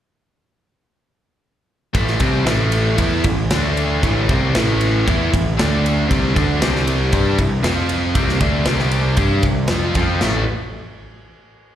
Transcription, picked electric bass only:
1.95 2.19 A1 medium
2.21 2.45 C2 medium
2.46 2.95 A1 loud
2.99 3.23 E2 medium
3.25 3.49 A1 medium
3.51 3.99 D2 loud
4.03 4.27 A1 medium
4.30 4.53 C2 loud
4.55 5.03 A1 loud
5.08 5.31 E2 loud
5.34 5.57 A1 medium
5.59 6.07 D2 medium
6.11 6.34 C2 medium
6.36 6.60 D2 loud
6.62 7.10 C2 loud
7.13 7.37 G2 loud
7.39 7.63 C2 medium
7.64 8.12 F2 medium
8.15 8.40 C2 medium
8.41 8.65 D2 medium
8.67 9.15 C2 medium
9.17 9.42 G2 medium
9.43 9.68 C2 medium
9.68 9.94 F2 medium
9.95 10.20 F2 medium
10.22 10.46 A1 medium

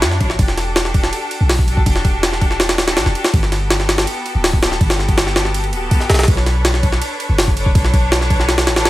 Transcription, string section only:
0.00 0.18 D4 loud
0.00 0.18 E4 medium
0.00 0.18 F#4 medium
0.00 0.18 C#5 loud
0.21 0.37 D4 medium
0.21 0.37 E4 medium
0.21 0.37 F#4 medium
0.21 0.37 C#5 medium
0.39 1.66 D4 medium
0.39 1.66 F#4 medium
0.39 1.66 G4 medium
0.39 1.66 A4 loud
1.68 1.84 D4 loud
1.68 1.84 F#4 medium
1.68 1.84 G4 medium
1.68 1.84 A4 loud
1.86 2.86 D4 loud
1.86 2.86 F#4 medium
1.86 2.86 G4 medium
1.86 2.86 A4 loud
2.87 3.13 D4 loud
2.87 3.13 F#4 medium
2.87 3.13 G4 medium
2.87 3.13 A4 loud
3.15 3.31 D4 medium
3.15 3.31 F#4 medium
3.15 3.31 G4 medium
3.15 3.31 A4 loud
3.34 4.60 B3 medium
3.34 4.60 F#4 medium
3.34 4.60 G4 medium
3.34 4.60 A4 loud
4.63 4.79 B3 loud
4.63 4.79 F#4 medium
4.63 4.79 G4 medium
4.63 4.79 A4 loud
4.81 5.71 B3 loud
4.81 5.71 F#4 loud
4.81 5.71 G4 medium
4.81 5.71 A4 loud
5.72 6.26 B3 loud
5.72 6.26 F#4 medium
5.72 6.26 G4 loud
5.72 6.26 A4 loud
6.28 7.55 D4 medium
6.28 7.55 A4 medium
6.28 7.55 B4 medium
6.28 7.55 C#5 loud
7.57 7.73 D4 loud
7.57 7.73 A4 medium
7.57 7.73 B4 medium
7.57 7.73 C#5 loud
7.75 8.75 D4 loud
7.75 8.75 A4 medium
7.75 8.75 B4 medium
7.75 8.75 C#5 loud
8.77 8.90 D4 loud
8.77 8.90 A4 medium
8.77 8.90 B4 medium
8.77 8.90 C#5 loud

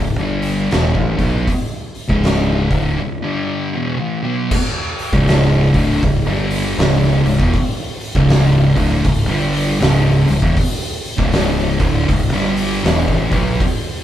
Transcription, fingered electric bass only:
0.00 0.18 C#1 medium
0.19 0.68 G1 medium
0.73 0.94 E1 loud
0.96 1.18 A1 loud
1.19 1.46 B1 loud
2.09 2.67 C#1 loud
2.71 2.98 D1 medium
5.12 5.70 C#1 loud
5.74 6.01 D1 loud
6.03 6.25 C#1 medium
6.26 6.75 G1 loud
6.78 7.22 C#1 loud
7.24 7.38 C#1 medium
7.40 7.53 E1 medium
8.15 8.73 C#1 loud
8.76 9.03 D1 loud
9.05 9.27 C#1 medium
9.29 9.78 G1 loud
9.82 10.25 C#1 loud
10.29 10.42 C#1 medium
10.43 10.56 E1 loud
11.19 11.76 C#1 loud
11.80 12.07 D1 loud
12.09 12.31 C#1 medium
12.33 12.81 G1 loud
12.85 13.07 E1 loud
13.08 13.30 A1 medium
13.32 13.59 B1 loud

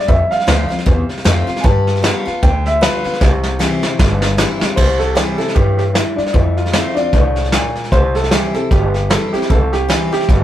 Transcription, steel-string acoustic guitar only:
0.08 0.83 F2 medium
0.47 0.69 F3 loud
0.47 0.69 A3 loud
0.47 0.70 C4 loud
0.47 0.67 F4 loud
0.69 0.86 C4 medium
0.69 0.85 F4 medium
0.86 1.61 C3 loud
1.24 1.47 F3 medium
1.24 1.47 A3 loud
1.24 1.48 C4 loud
1.24 1.46 F4 medium
1.47 1.64 C4 medium
1.47 1.64 F4 medium
1.64 2.01 G3 medium
2.03 2.25 G3 medium
2.03 2.26 B3 medium
2.03 2.24 F4 loud
2.25 2.43 B3 medium
2.25 2.42 F4 medium
2.43 3.18 D3 loud
2.81 3.03 G3 medium
2.81 3.04 B3 medium
2.81 3.03 F4 loud
3.04 3.21 B3 medium
3.04 3.20 F4 medium
3.21 3.96 C3 loud
3.59 3.81 E3 medium
3.59 3.82 G3 medium
3.59 3.82 C4 medium
3.59 3.81 E4 loud
3.82 4.00 C4 medium
3.82 3.98 E4 medium
4.00 4.75 G2 loud
4.38 4.60 E3 medium
4.38 4.60 G3 medium
4.38 4.61 C4 medium
4.38 4.59 E4 medium
4.60 4.77 C4 soft
4.60 4.76 E4 medium
4.77 5.53 C3 medium
5.15 5.38 E3 medium
5.15 5.38 G3 medium
5.15 5.39 C4 medium
5.15 5.37 E4 loud
5.38 5.56 C4 medium
5.38 5.55 E4 medium
5.56 5.94 A2 medium
5.95 6.33 G2 medium
6.34 7.10 F2 medium
6.73 6.96 F3 medium
6.73 6.96 A3 loud
6.73 6.96 C4 loud
6.73 6.95 F4 medium
6.97 7.14 C4 medium
6.97 7.13 F4 medium
7.13 7.51 A2 medium
7.53 7.91 A#2 medium
7.93 8.68 C3 medium
8.31 8.53 E3 medium
8.31 8.54 G3 medium
8.31 8.54 C4 medium
8.31 8.53 E4 loud
8.54 8.71 C4 medium
8.54 8.70 E4 medium
8.71 9.47 G2 medium
9.10 9.32 E3 medium
9.10 9.33 G3 medium
9.10 9.33 C4 medium
9.10 9.32 E4 medium
9.34 9.50 C4 medium
9.34 9.49 E4 medium
9.50 10.26 C3 loud
9.89 10.11 E3 medium
9.89 10.11 G3 medium
9.89 10.12 C4 medium
9.89 10.11 E4 loud
10.12 10.29 C4 medium
10.12 10.28 E4 medium
10.29 10.44 G2 medium

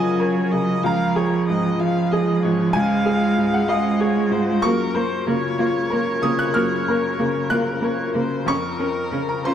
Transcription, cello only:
0.00 0.84 F#3 medium
0.85 1.79 F3 medium
1.80 2.77 F3 medium
2.75 3.69 G#3 medium
3.70 4.62 G#3 medium
4.65 4.73 A#3 medium
4.96 5.04 A#3 medium
5.27 5.35 A#3 medium
5.59 5.67 A#3 medium
5.92 6.00 A#3 medium
6.24 6.32 A#3 medium
6.55 6.63 A#3 medium
6.88 6.96 A#3 medium
7.19 7.27 A#3 medium
7.51 7.59 A#3 medium
7.81 7.89 A#3 medium
8.15 8.23 A#3 medium
8.47 8.55 C#4 medium
8.79 8.87 C#4 medium
9.12 9.20 C#4 medium
9.46 9.54 C#4 medium

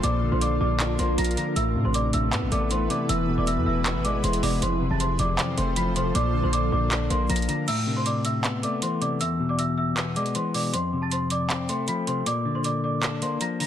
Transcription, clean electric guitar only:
0.03 0.99 A#2 medium
0.22 1.18 D3 medium
0.79 1.56 D4 loud
0.99 1.56 A#3 medium
1.18 1.56 F3 medium
1.37 1.56 D3 medium
1.57 2.52 A2 medium
1.75 2.71 C3 medium
2.33 3.09 B3 loud
2.52 3.09 A3 medium
2.71 3.09 E3 medium
2.90 3.09 C3 medium
3.09 4.05 E2 medium
3.28 4.24 B2 medium
3.86 4.62 B3 loud
4.05 4.62 G#3 loud
4.24 4.62 E3 medium
4.43 4.62 B2 medium
4.62 5.57 F2 loud
4.82 5.77 C3 medium
5.38 6.15 C4 medium
5.57 6.15 A3 medium
5.77 6.15 F3 medium
5.96 6.14 C3 medium
6.15 7.10 A#2 medium
6.34 7.29 D3 medium
6.91 7.68 D4 loud
7.11 7.68 A#3 medium
7.29 7.68 F3 medium
7.49 7.68 D3 medium
7.68 8.64 A2 medium
7.87 8.82 C3 medium
8.45 9.21 B3 loud
8.63 9.21 A3 medium
8.82 9.21 E3 medium
9.01 9.20 C3 medium
9.21 10.16 E2 medium
9.40 10.35 B2 medium
9.97 10.73 B3 loud
10.17 10.74 G#3 medium
10.35 10.74 E3 medium
10.54 10.73 B2 medium
10.73 11.69 F2 loud
10.93 11.88 C3 medium
11.50 12.26 C4 medium
11.69 12.26 A3 medium
11.88 12.26 F3 medium
12.07 12.26 C3 medium
12.26 13.22 A#2 medium
12.45 13.41 D3 medium
13.02 13.67 D4 loud
13.22 13.67 A#3 medium
13.41 13.67 F3 medium
13.60 13.67 D3 medium

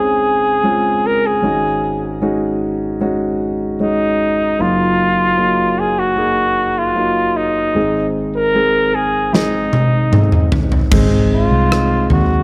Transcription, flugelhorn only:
0.00 1.08 G#4 medium
1.06 1.28 A#4 medium
1.26 2.04 G#4 medium
3.82 4.63 D#4 medium
4.61 5.81 F4 medium
5.79 6.00 G#4 medium
5.99 6.80 F#4 medium
6.78 7.38 F4 medium
7.37 8.08 D#4 medium
8.36 8.96 A#4 medium
8.95 9.35 G#4 medium
9.34 10.52 D#4 medium
11.34 12.08 F4 medium
12.13 12.43 F#4 medium

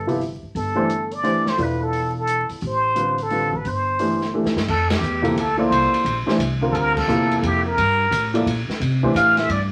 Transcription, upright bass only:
0.00 0.39 G1 medium
0.43 muted upright bass stroke soft
0.55 1.54 G1 medium
1.58 2.45 E1 medium
2.49 muted upright bass stroke soft
2.62 3.49 A1 medium
3.53 3.64 A1 medium
3.65 4.41 G1 medium
4.44 4.55 E2 soft
4.56 4.67 G2 medium
4.68 5.00 F2 medium
5.01 5.35 E2 medium
5.36 5.70 D2 medium
5.71 5.91 C2 medium
5.92 muted upright bass stroke soft
6.04 6.26 A#1 medium
6.38 6.72 C2 medium
6.72 7.07 D2 medium
7.08 7.41 E2 medium
7.42 7.76 F2 medium
7.77 8.11 G2 medium
8.11 8.45 A2 medium
8.46 8.67 A#2 medium
8.68 muted upright bass stroke soft
8.80 9.14 C3 medium
9.14 9.48 A2 medium
9.49 9.72 G2 medium

